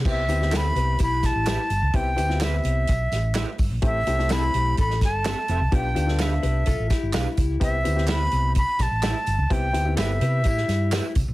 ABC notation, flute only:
X:1
M:4/4
L:1/8
Q:1/4=127
K:C
V:1 name="Flute"
e2 b2 b a3 | g2 e4- e z | e2 b2 b a3 | g2 e4- e z |
e2 b2 b a3 | g2 e4- e z |]